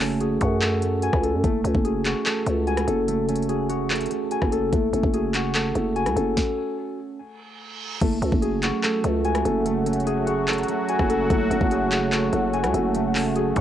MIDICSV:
0, 0, Header, 1, 7, 480
1, 0, Start_track
1, 0, Key_signature, 3, "minor"
1, 0, Tempo, 410959
1, 1681, Time_signature, 4, 2, 24, 8
1, 15894, End_track
2, 0, Start_track
2, 0, Title_t, "Harp"
2, 0, Program_c, 0, 46
2, 0, Note_on_c, 0, 57, 75
2, 0, Note_on_c, 0, 66, 89
2, 0, Note_on_c, 0, 69, 77
2, 0, Note_on_c, 0, 80, 101
2, 243, Note_on_c, 0, 68, 81
2, 481, Note_off_c, 0, 66, 0
2, 486, Note_on_c, 0, 66, 97
2, 716, Note_off_c, 0, 57, 0
2, 721, Note_on_c, 0, 57, 69
2, 791, Note_off_c, 0, 80, 0
2, 957, Note_off_c, 0, 57, 0
2, 961, Note_on_c, 0, 57, 68
2, 1203, Note_on_c, 0, 80, 101
2, 1273, Note_off_c, 0, 69, 0
2, 1439, Note_on_c, 0, 69, 80
2, 1673, Note_off_c, 0, 57, 0
2, 1678, Note_on_c, 0, 57, 92
2, 1748, Note_off_c, 0, 68, 0
2, 1748, Note_off_c, 0, 80, 0
2, 1914, Note_off_c, 0, 57, 0
2, 1918, Note_on_c, 0, 57, 69
2, 2155, Note_on_c, 0, 68, 76
2, 2225, Note_off_c, 0, 69, 0
2, 2397, Note_off_c, 0, 66, 0
2, 2401, Note_on_c, 0, 66, 90
2, 2634, Note_off_c, 0, 57, 0
2, 2639, Note_on_c, 0, 57, 72
2, 2873, Note_off_c, 0, 57, 0
2, 2878, Note_on_c, 0, 57, 72
2, 3121, Note_on_c, 0, 80, 106
2, 3355, Note_on_c, 0, 69, 78
2, 3593, Note_off_c, 0, 57, 0
2, 3598, Note_on_c, 0, 57, 94
2, 3668, Note_off_c, 0, 68, 0
2, 3837, Note_off_c, 0, 57, 0
2, 3841, Note_on_c, 0, 57, 74
2, 4077, Note_on_c, 0, 68, 84
2, 4307, Note_off_c, 0, 66, 0
2, 4312, Note_on_c, 0, 66, 92
2, 4558, Note_off_c, 0, 57, 0
2, 4562, Note_on_c, 0, 57, 75
2, 4632, Note_off_c, 0, 80, 0
2, 4793, Note_off_c, 0, 57, 0
2, 4798, Note_on_c, 0, 57, 68
2, 5041, Note_on_c, 0, 80, 106
2, 5111, Note_off_c, 0, 69, 0
2, 5283, Note_on_c, 0, 69, 90
2, 5513, Note_off_c, 0, 57, 0
2, 5518, Note_on_c, 0, 57, 79
2, 5588, Note_off_c, 0, 68, 0
2, 5588, Note_off_c, 0, 80, 0
2, 5752, Note_off_c, 0, 57, 0
2, 5757, Note_on_c, 0, 57, 76
2, 6002, Note_on_c, 0, 68, 71
2, 6072, Note_off_c, 0, 69, 0
2, 6238, Note_off_c, 0, 66, 0
2, 6242, Note_on_c, 0, 66, 89
2, 6473, Note_off_c, 0, 57, 0
2, 6478, Note_on_c, 0, 57, 68
2, 6711, Note_off_c, 0, 57, 0
2, 6716, Note_on_c, 0, 57, 71
2, 6959, Note_on_c, 0, 80, 106
2, 7195, Note_on_c, 0, 69, 76
2, 8658, Note_off_c, 0, 68, 0
2, 8711, Note_off_c, 0, 80, 0
2, 9089, Note_off_c, 0, 66, 0
2, 9353, Note_off_c, 0, 57, 0
2, 9357, Note_on_c, 0, 57, 96
2, 9594, Note_off_c, 0, 57, 0
2, 9599, Note_on_c, 0, 57, 72
2, 9760, Note_off_c, 0, 69, 0
2, 9834, Note_on_c, 0, 68, 80
2, 10082, Note_on_c, 0, 66, 90
2, 10315, Note_off_c, 0, 57, 0
2, 10320, Note_on_c, 0, 57, 72
2, 10554, Note_off_c, 0, 57, 0
2, 10559, Note_on_c, 0, 57, 77
2, 10801, Note_on_c, 0, 80, 102
2, 11035, Note_on_c, 0, 69, 79
2, 11273, Note_off_c, 0, 57, 0
2, 11278, Note_on_c, 0, 57, 96
2, 11348, Note_off_c, 0, 68, 0
2, 11517, Note_off_c, 0, 57, 0
2, 11522, Note_on_c, 0, 57, 75
2, 11757, Note_on_c, 0, 68, 88
2, 11986, Note_off_c, 0, 66, 0
2, 11991, Note_on_c, 0, 66, 96
2, 12237, Note_off_c, 0, 57, 0
2, 12242, Note_on_c, 0, 57, 76
2, 12312, Note_off_c, 0, 80, 0
2, 12473, Note_off_c, 0, 57, 0
2, 12478, Note_on_c, 0, 57, 69
2, 12721, Note_on_c, 0, 80, 109
2, 12791, Note_off_c, 0, 69, 0
2, 12962, Note_on_c, 0, 69, 92
2, 13193, Note_off_c, 0, 57, 0
2, 13198, Note_on_c, 0, 57, 85
2, 13268, Note_off_c, 0, 68, 0
2, 13268, Note_off_c, 0, 80, 0
2, 13432, Note_off_c, 0, 57, 0
2, 13437, Note_on_c, 0, 57, 80
2, 13683, Note_on_c, 0, 68, 69
2, 13753, Note_off_c, 0, 69, 0
2, 13918, Note_off_c, 0, 66, 0
2, 13922, Note_on_c, 0, 66, 92
2, 14154, Note_off_c, 0, 57, 0
2, 14158, Note_on_c, 0, 57, 71
2, 14391, Note_off_c, 0, 57, 0
2, 14395, Note_on_c, 0, 57, 73
2, 14640, Note_on_c, 0, 80, 107
2, 14876, Note_on_c, 0, 69, 78
2, 15116, Note_off_c, 0, 57, 0
2, 15121, Note_on_c, 0, 57, 96
2, 15191, Note_off_c, 0, 68, 0
2, 15355, Note_off_c, 0, 57, 0
2, 15359, Note_on_c, 0, 57, 77
2, 15604, Note_on_c, 0, 68, 87
2, 15841, Note_off_c, 0, 66, 0
2, 15845, Note_on_c, 0, 66, 102
2, 15894, Note_off_c, 0, 57, 0
2, 15894, Note_off_c, 0, 66, 0
2, 15894, Note_off_c, 0, 68, 0
2, 15894, Note_off_c, 0, 69, 0
2, 15894, Note_off_c, 0, 80, 0
2, 15894, End_track
3, 0, Start_track
3, 0, Title_t, "Tine electric piano"
3, 0, Program_c, 1, 4
3, 0, Control_c, 1, 64, 127
3, 0, Note_on_c, 1, 57, 88
3, 0, Note_on_c, 1, 61, 80
3, 0, Note_on_c, 1, 66, 90
3, 0, Note_on_c, 1, 68, 85
3, 0, Note_on_c, 1, 69, 102
3, 4, Note_off_c, 1, 61, 0
3, 4, Note_on_c, 1, 61, 82
3, 230, Note_off_c, 1, 66, 0
3, 244, Note_on_c, 1, 66, 86
3, 480, Note_off_c, 1, 68, 0
3, 480, Note_on_c, 1, 68, 85
3, 721, Note_off_c, 1, 69, 0
3, 721, Note_on_c, 1, 69, 96
3, 960, Note_off_c, 1, 57, 0
3, 1180, Note_off_c, 1, 66, 0
3, 1195, Note_on_c, 1, 66, 86
3, 1202, Note_off_c, 1, 61, 0
3, 1441, Note_on_c, 1, 61, 76
3, 1678, Note_off_c, 1, 66, 0
3, 1679, Note_on_c, 1, 57, 91
3, 1680, Note_off_c, 1, 68, 0
3, 1681, Note_off_c, 1, 61, 0
3, 1681, Note_off_c, 1, 69, 0
3, 1694, Control_c, 1, 64, 0
3, 1922, Note_on_c, 1, 61, 79
3, 1937, Control_c, 1, 64, 127
3, 2165, Note_on_c, 1, 66, 82
3, 2402, Note_on_c, 1, 68, 86
3, 2639, Note_on_c, 1, 69, 97
3, 2880, Note_off_c, 1, 57, 0
3, 3104, Note_off_c, 1, 66, 0
3, 3118, Note_on_c, 1, 66, 93
3, 3121, Note_off_c, 1, 61, 0
3, 3362, Note_on_c, 1, 61, 77
3, 3601, Note_off_c, 1, 68, 0
3, 3602, Note_on_c, 1, 57, 90
3, 3826, Note_off_c, 1, 61, 0
3, 3840, Note_off_c, 1, 69, 0
3, 3840, Note_on_c, 1, 61, 80
3, 4064, Note_off_c, 1, 66, 0
3, 4078, Note_on_c, 1, 66, 87
3, 4324, Note_on_c, 1, 68, 88
3, 4558, Note_on_c, 1, 69, 90
3, 4801, Note_off_c, 1, 57, 0
3, 5021, Note_off_c, 1, 66, 0
3, 5035, Note_on_c, 1, 66, 89
3, 5041, Note_off_c, 1, 61, 0
3, 5281, Note_on_c, 1, 61, 78
3, 5518, Note_off_c, 1, 66, 0
3, 5518, Note_on_c, 1, 57, 100
3, 5519, Note_off_c, 1, 69, 0
3, 5521, Note_off_c, 1, 61, 0
3, 5522, Note_off_c, 1, 68, 0
3, 5534, Control_c, 1, 64, 0
3, 5708, Control_c, 1, 64, 127
3, 5762, Note_on_c, 1, 61, 81
3, 5997, Note_on_c, 1, 66, 91
3, 6243, Note_on_c, 1, 68, 84
3, 6480, Note_on_c, 1, 69, 96
3, 6719, Note_off_c, 1, 57, 0
3, 6946, Note_off_c, 1, 66, 0
3, 6960, Note_on_c, 1, 66, 90
3, 6961, Note_off_c, 1, 61, 0
3, 7199, Note_on_c, 1, 61, 78
3, 7442, Note_off_c, 1, 68, 0
3, 7455, Control_c, 1, 64, 0
3, 7680, Note_off_c, 1, 69, 0
3, 8160, Note_off_c, 1, 66, 0
3, 8400, Note_off_c, 1, 61, 0
3, 9362, Note_on_c, 1, 57, 96
3, 9584, Control_c, 1, 64, 127
3, 9602, Note_on_c, 1, 61, 81
3, 9847, Note_on_c, 1, 66, 84
3, 10082, Note_on_c, 1, 68, 88
3, 10320, Note_on_c, 1, 69, 97
3, 10561, Note_off_c, 1, 57, 0
3, 10786, Note_off_c, 1, 66, 0
3, 10800, Note_on_c, 1, 66, 99
3, 10802, Note_off_c, 1, 61, 0
3, 11042, Note_on_c, 1, 61, 79
3, 11281, Note_off_c, 1, 68, 0
3, 11283, Note_on_c, 1, 57, 97
3, 11507, Note_off_c, 1, 61, 0
3, 11520, Note_off_c, 1, 69, 0
3, 11521, Note_on_c, 1, 61, 82
3, 11746, Note_off_c, 1, 66, 0
3, 11760, Note_on_c, 1, 66, 87
3, 12007, Note_on_c, 1, 68, 89
3, 12240, Note_on_c, 1, 69, 92
3, 12482, Note_off_c, 1, 57, 0
3, 12703, Note_off_c, 1, 66, 0
3, 12717, Note_on_c, 1, 66, 90
3, 12721, Note_off_c, 1, 61, 0
3, 12962, Note_on_c, 1, 61, 80
3, 13199, Note_off_c, 1, 66, 0
3, 13200, Note_off_c, 1, 69, 0
3, 13200, Note_on_c, 1, 57, 106
3, 13201, Note_off_c, 1, 61, 0
3, 13204, Note_off_c, 1, 68, 0
3, 13218, Control_c, 1, 64, 0
3, 13407, Control_c, 1, 64, 127
3, 13443, Note_on_c, 1, 61, 84
3, 13679, Note_on_c, 1, 66, 92
3, 13924, Note_on_c, 1, 68, 85
3, 14160, Note_on_c, 1, 69, 99
3, 14400, Note_off_c, 1, 57, 0
3, 14625, Note_off_c, 1, 66, 0
3, 14639, Note_on_c, 1, 66, 92
3, 14642, Note_off_c, 1, 61, 0
3, 14880, Note_on_c, 1, 61, 81
3, 15120, Note_on_c, 1, 57, 91
3, 15122, Note_off_c, 1, 68, 0
3, 15350, Note_off_c, 1, 61, 0
3, 15360, Note_off_c, 1, 69, 0
3, 15364, Note_on_c, 1, 61, 81
3, 15590, Note_off_c, 1, 66, 0
3, 15604, Note_on_c, 1, 66, 85
3, 15840, Note_on_c, 1, 68, 86
3, 15894, Note_off_c, 1, 57, 0
3, 15894, Note_off_c, 1, 61, 0
3, 15894, Note_off_c, 1, 66, 0
3, 15894, Note_off_c, 1, 68, 0
3, 15894, End_track
4, 0, Start_track
4, 0, Title_t, "Analog synth pad"
4, 0, Program_c, 2, 89
4, 9360, Note_on_c, 2, 54, 87
4, 9360, Note_on_c, 2, 66, 92
4, 9361, Note_on_c, 2, 57, 83
4, 13162, Note_off_c, 2, 57, 0
4, 13201, Note_on_c, 2, 57, 77
4, 15894, Note_off_c, 2, 54, 0
4, 15894, Note_off_c, 2, 57, 0
4, 15894, Note_off_c, 2, 66, 0
4, 15894, End_track
5, 0, Start_track
5, 0, Title_t, "808-style bass"
5, 0, Program_c, 3, 38
5, 0, Note_on_c, 3, 30, 107
5, 443, Note_off_c, 3, 30, 0
5, 481, Note_on_c, 3, 42, 105
5, 1287, Note_off_c, 3, 42, 0
5, 1321, Note_on_c, 3, 37, 108
5, 1560, Note_on_c, 3, 42, 96
5, 1578, Note_off_c, 3, 37, 0
5, 1674, Note_off_c, 3, 42, 0
5, 1680, Note_on_c, 3, 30, 111
5, 1911, Note_off_c, 3, 30, 0
5, 1920, Note_on_c, 3, 37, 100
5, 2033, Note_off_c, 3, 37, 0
5, 2040, Note_on_c, 3, 30, 104
5, 2501, Note_off_c, 3, 30, 0
5, 2880, Note_on_c, 3, 37, 103
5, 3341, Note_off_c, 3, 37, 0
5, 3360, Note_on_c, 3, 30, 105
5, 4754, Note_off_c, 3, 30, 0
5, 5161, Note_on_c, 3, 30, 104
5, 5506, Note_off_c, 3, 30, 0
5, 5520, Note_on_c, 3, 30, 110
5, 5751, Note_off_c, 3, 30, 0
5, 5760, Note_on_c, 3, 30, 102
5, 5873, Note_off_c, 3, 30, 0
5, 5880, Note_on_c, 3, 30, 108
5, 6687, Note_off_c, 3, 30, 0
5, 6720, Note_on_c, 3, 30, 108
5, 7080, Note_on_c, 3, 37, 100
5, 7098, Note_off_c, 3, 30, 0
5, 7195, Note_off_c, 3, 37, 0
5, 7200, Note_on_c, 3, 30, 109
5, 7431, Note_off_c, 3, 30, 0
5, 9361, Note_on_c, 3, 30, 115
5, 9591, Note_off_c, 3, 30, 0
5, 9601, Note_on_c, 3, 37, 104
5, 9713, Note_off_c, 3, 37, 0
5, 9720, Note_on_c, 3, 30, 109
5, 10181, Note_off_c, 3, 30, 0
5, 10560, Note_on_c, 3, 37, 108
5, 11021, Note_off_c, 3, 37, 0
5, 11041, Note_on_c, 3, 30, 108
5, 12434, Note_off_c, 3, 30, 0
5, 12841, Note_on_c, 3, 30, 103
5, 13186, Note_off_c, 3, 30, 0
5, 13200, Note_on_c, 3, 30, 116
5, 13431, Note_off_c, 3, 30, 0
5, 13441, Note_on_c, 3, 30, 104
5, 13553, Note_off_c, 3, 30, 0
5, 13560, Note_on_c, 3, 30, 111
5, 14367, Note_off_c, 3, 30, 0
5, 14400, Note_on_c, 3, 30, 107
5, 14761, Note_on_c, 3, 37, 99
5, 14778, Note_off_c, 3, 30, 0
5, 14875, Note_off_c, 3, 37, 0
5, 14880, Note_on_c, 3, 30, 110
5, 15802, Note_off_c, 3, 30, 0
5, 15841, Note_on_c, 3, 42, 105
5, 15894, Note_off_c, 3, 42, 0
5, 15894, End_track
6, 0, Start_track
6, 0, Title_t, "Reverse cymbal"
6, 0, Program_c, 4, 119
6, 8400, Note_on_c, 4, 60, 87
6, 9360, Note_off_c, 4, 60, 0
6, 15894, End_track
7, 0, Start_track
7, 0, Title_t, "Drums"
7, 0, Note_on_c, 9, 39, 99
7, 4, Note_on_c, 9, 46, 90
7, 117, Note_off_c, 9, 39, 0
7, 120, Note_off_c, 9, 46, 0
7, 239, Note_on_c, 9, 42, 64
7, 356, Note_off_c, 9, 42, 0
7, 477, Note_on_c, 9, 42, 74
7, 481, Note_on_c, 9, 36, 94
7, 594, Note_off_c, 9, 42, 0
7, 597, Note_off_c, 9, 36, 0
7, 719, Note_on_c, 9, 39, 117
7, 723, Note_on_c, 9, 42, 63
7, 836, Note_off_c, 9, 39, 0
7, 840, Note_off_c, 9, 42, 0
7, 958, Note_on_c, 9, 42, 69
7, 1075, Note_off_c, 9, 42, 0
7, 1194, Note_on_c, 9, 42, 67
7, 1311, Note_off_c, 9, 42, 0
7, 1319, Note_on_c, 9, 37, 96
7, 1321, Note_on_c, 9, 36, 92
7, 1436, Note_off_c, 9, 37, 0
7, 1438, Note_off_c, 9, 36, 0
7, 1442, Note_on_c, 9, 42, 91
7, 1559, Note_off_c, 9, 42, 0
7, 1680, Note_on_c, 9, 36, 117
7, 1680, Note_on_c, 9, 42, 83
7, 1797, Note_off_c, 9, 36, 0
7, 1797, Note_off_c, 9, 42, 0
7, 1924, Note_on_c, 9, 42, 82
7, 2040, Note_on_c, 9, 36, 104
7, 2041, Note_off_c, 9, 42, 0
7, 2157, Note_off_c, 9, 36, 0
7, 2160, Note_on_c, 9, 42, 64
7, 2276, Note_off_c, 9, 42, 0
7, 2397, Note_on_c, 9, 42, 72
7, 2400, Note_on_c, 9, 39, 104
7, 2514, Note_off_c, 9, 42, 0
7, 2517, Note_off_c, 9, 39, 0
7, 2639, Note_on_c, 9, 39, 115
7, 2643, Note_on_c, 9, 42, 64
7, 2756, Note_off_c, 9, 39, 0
7, 2760, Note_off_c, 9, 42, 0
7, 2879, Note_on_c, 9, 42, 66
7, 2995, Note_off_c, 9, 42, 0
7, 3120, Note_on_c, 9, 42, 41
7, 3237, Note_off_c, 9, 42, 0
7, 3238, Note_on_c, 9, 37, 97
7, 3239, Note_on_c, 9, 42, 72
7, 3355, Note_off_c, 9, 37, 0
7, 3356, Note_off_c, 9, 42, 0
7, 3361, Note_on_c, 9, 42, 81
7, 3478, Note_off_c, 9, 42, 0
7, 3599, Note_on_c, 9, 42, 83
7, 3716, Note_off_c, 9, 42, 0
7, 3839, Note_on_c, 9, 42, 81
7, 3920, Note_off_c, 9, 42, 0
7, 3920, Note_on_c, 9, 42, 66
7, 4000, Note_off_c, 9, 42, 0
7, 4000, Note_on_c, 9, 42, 47
7, 4079, Note_off_c, 9, 42, 0
7, 4079, Note_on_c, 9, 42, 64
7, 4196, Note_off_c, 9, 42, 0
7, 4317, Note_on_c, 9, 42, 70
7, 4434, Note_off_c, 9, 42, 0
7, 4559, Note_on_c, 9, 39, 118
7, 4560, Note_on_c, 9, 42, 55
7, 4620, Note_off_c, 9, 42, 0
7, 4620, Note_on_c, 9, 42, 53
7, 4676, Note_off_c, 9, 39, 0
7, 4679, Note_off_c, 9, 42, 0
7, 4679, Note_on_c, 9, 42, 55
7, 4739, Note_off_c, 9, 42, 0
7, 4739, Note_on_c, 9, 42, 54
7, 4798, Note_off_c, 9, 42, 0
7, 4798, Note_on_c, 9, 42, 68
7, 4914, Note_off_c, 9, 42, 0
7, 5034, Note_on_c, 9, 42, 67
7, 5151, Note_off_c, 9, 42, 0
7, 5158, Note_on_c, 9, 37, 96
7, 5161, Note_on_c, 9, 36, 97
7, 5275, Note_off_c, 9, 37, 0
7, 5277, Note_off_c, 9, 36, 0
7, 5282, Note_on_c, 9, 42, 87
7, 5399, Note_off_c, 9, 42, 0
7, 5520, Note_on_c, 9, 36, 118
7, 5520, Note_on_c, 9, 42, 84
7, 5637, Note_off_c, 9, 36, 0
7, 5637, Note_off_c, 9, 42, 0
7, 5764, Note_on_c, 9, 42, 84
7, 5880, Note_on_c, 9, 36, 106
7, 5881, Note_off_c, 9, 42, 0
7, 5997, Note_off_c, 9, 36, 0
7, 5999, Note_on_c, 9, 42, 64
7, 6116, Note_off_c, 9, 42, 0
7, 6237, Note_on_c, 9, 42, 73
7, 6240, Note_on_c, 9, 39, 102
7, 6354, Note_off_c, 9, 42, 0
7, 6357, Note_off_c, 9, 39, 0
7, 6479, Note_on_c, 9, 39, 117
7, 6483, Note_on_c, 9, 42, 63
7, 6596, Note_off_c, 9, 39, 0
7, 6600, Note_off_c, 9, 42, 0
7, 6720, Note_on_c, 9, 42, 69
7, 6836, Note_off_c, 9, 42, 0
7, 6961, Note_on_c, 9, 42, 42
7, 7077, Note_off_c, 9, 42, 0
7, 7079, Note_on_c, 9, 37, 95
7, 7081, Note_on_c, 9, 42, 73
7, 7196, Note_off_c, 9, 37, 0
7, 7197, Note_off_c, 9, 42, 0
7, 7203, Note_on_c, 9, 42, 80
7, 7320, Note_off_c, 9, 42, 0
7, 7440, Note_on_c, 9, 36, 108
7, 7440, Note_on_c, 9, 38, 91
7, 7557, Note_off_c, 9, 36, 0
7, 7557, Note_off_c, 9, 38, 0
7, 9360, Note_on_c, 9, 36, 121
7, 9360, Note_on_c, 9, 42, 85
7, 9360, Note_on_c, 9, 49, 102
7, 9477, Note_off_c, 9, 36, 0
7, 9477, Note_off_c, 9, 42, 0
7, 9477, Note_off_c, 9, 49, 0
7, 9604, Note_on_c, 9, 42, 86
7, 9720, Note_off_c, 9, 42, 0
7, 9720, Note_on_c, 9, 36, 110
7, 9837, Note_off_c, 9, 36, 0
7, 9839, Note_on_c, 9, 42, 65
7, 9956, Note_off_c, 9, 42, 0
7, 10076, Note_on_c, 9, 42, 72
7, 10079, Note_on_c, 9, 39, 106
7, 10193, Note_off_c, 9, 42, 0
7, 10196, Note_off_c, 9, 39, 0
7, 10319, Note_on_c, 9, 39, 123
7, 10322, Note_on_c, 9, 42, 65
7, 10435, Note_off_c, 9, 39, 0
7, 10439, Note_off_c, 9, 42, 0
7, 10558, Note_on_c, 9, 42, 70
7, 10675, Note_off_c, 9, 42, 0
7, 10799, Note_on_c, 9, 42, 43
7, 10916, Note_off_c, 9, 42, 0
7, 10918, Note_on_c, 9, 37, 99
7, 10920, Note_on_c, 9, 42, 74
7, 11035, Note_off_c, 9, 37, 0
7, 11036, Note_off_c, 9, 42, 0
7, 11042, Note_on_c, 9, 42, 82
7, 11159, Note_off_c, 9, 42, 0
7, 11280, Note_on_c, 9, 42, 83
7, 11396, Note_off_c, 9, 42, 0
7, 11520, Note_on_c, 9, 42, 83
7, 11600, Note_off_c, 9, 42, 0
7, 11600, Note_on_c, 9, 42, 68
7, 11680, Note_off_c, 9, 42, 0
7, 11680, Note_on_c, 9, 42, 50
7, 11759, Note_off_c, 9, 42, 0
7, 11759, Note_on_c, 9, 42, 66
7, 11876, Note_off_c, 9, 42, 0
7, 11997, Note_on_c, 9, 42, 75
7, 12113, Note_off_c, 9, 42, 0
7, 12239, Note_on_c, 9, 39, 121
7, 12240, Note_on_c, 9, 42, 55
7, 12300, Note_off_c, 9, 42, 0
7, 12300, Note_on_c, 9, 42, 55
7, 12355, Note_off_c, 9, 39, 0
7, 12360, Note_off_c, 9, 42, 0
7, 12360, Note_on_c, 9, 42, 53
7, 12420, Note_off_c, 9, 42, 0
7, 12420, Note_on_c, 9, 42, 55
7, 12479, Note_off_c, 9, 42, 0
7, 12479, Note_on_c, 9, 42, 69
7, 12596, Note_off_c, 9, 42, 0
7, 12714, Note_on_c, 9, 42, 70
7, 12831, Note_off_c, 9, 42, 0
7, 12838, Note_on_c, 9, 37, 99
7, 12841, Note_on_c, 9, 36, 97
7, 12955, Note_off_c, 9, 37, 0
7, 12958, Note_off_c, 9, 36, 0
7, 12962, Note_on_c, 9, 42, 91
7, 13079, Note_off_c, 9, 42, 0
7, 13200, Note_on_c, 9, 36, 119
7, 13200, Note_on_c, 9, 42, 85
7, 13317, Note_off_c, 9, 36, 0
7, 13317, Note_off_c, 9, 42, 0
7, 13444, Note_on_c, 9, 42, 82
7, 13560, Note_on_c, 9, 36, 105
7, 13561, Note_off_c, 9, 42, 0
7, 13677, Note_off_c, 9, 36, 0
7, 13679, Note_on_c, 9, 42, 64
7, 13796, Note_off_c, 9, 42, 0
7, 13917, Note_on_c, 9, 42, 75
7, 13920, Note_on_c, 9, 39, 105
7, 14034, Note_off_c, 9, 42, 0
7, 14037, Note_off_c, 9, 39, 0
7, 14159, Note_on_c, 9, 39, 121
7, 14163, Note_on_c, 9, 42, 67
7, 14276, Note_off_c, 9, 39, 0
7, 14280, Note_off_c, 9, 42, 0
7, 14398, Note_on_c, 9, 42, 69
7, 14515, Note_off_c, 9, 42, 0
7, 14640, Note_on_c, 9, 42, 43
7, 14757, Note_off_c, 9, 42, 0
7, 14759, Note_on_c, 9, 37, 99
7, 14760, Note_on_c, 9, 42, 76
7, 14876, Note_off_c, 9, 37, 0
7, 14877, Note_off_c, 9, 42, 0
7, 14882, Note_on_c, 9, 42, 83
7, 14999, Note_off_c, 9, 42, 0
7, 15120, Note_on_c, 9, 42, 83
7, 15237, Note_off_c, 9, 42, 0
7, 15361, Note_on_c, 9, 39, 101
7, 15364, Note_on_c, 9, 46, 92
7, 15478, Note_off_c, 9, 39, 0
7, 15481, Note_off_c, 9, 46, 0
7, 15600, Note_on_c, 9, 42, 67
7, 15716, Note_off_c, 9, 42, 0
7, 15837, Note_on_c, 9, 42, 74
7, 15841, Note_on_c, 9, 36, 94
7, 15894, Note_off_c, 9, 36, 0
7, 15894, Note_off_c, 9, 42, 0
7, 15894, End_track
0, 0, End_of_file